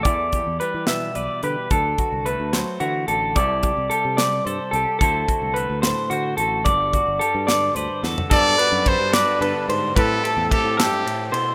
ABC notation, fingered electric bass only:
X:1
M:6/8
L:1/16
Q:3/8=73
K:G
V:1 name="Fingered electric bass" clef=bass
E,,3 E,, z E,3 B,,, z D, z | D,,2 z C,,2 D,,2 z D,2 A,,,2 | C,,3 C,, z C,3 G,, z C,, z | D,,2 z C,,2 D,,2 z D,2 A,,,2 |
G,,,3 G,,, z G,,3 D,, z E,, z | G,,2 z F,,2 G,,2 z G,, z _A,,2 | A,,2 z E,, z A,,2 z4 z |]